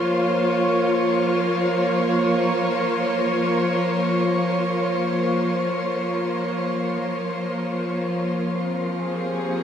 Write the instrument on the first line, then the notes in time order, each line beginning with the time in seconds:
string section
Already playing: F3 A#3 F4 C5 C#5
8.63 C4
8.99 G#4
9.14 G4